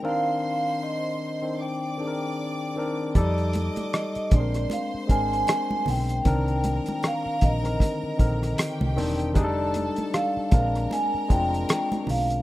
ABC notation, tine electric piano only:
X:1
M:4/4
L:1/16
Q:"Swing 16ths" 1/4=77
K:Cm
V:1 name="Tine electric piano"
[E,CDB]4- [E,CDB] z2 [E,CDc]2 z [E,CDAB]3 z [E,CDB]2 | [G,E=Ad]4- [G,EAd] z [_A,CD_AB]3 z [A,CDB]4- [A,CDB] z | [E,CDB]4- [E,CDB] z2 [D,E,CB]2 z [D,E,CB]3 z [E,CDc]2 | [G,DEA=A]4- [G,DE_A=A] z [_A,CDB]3 z [A,CDF]4- [A,CDF] z |]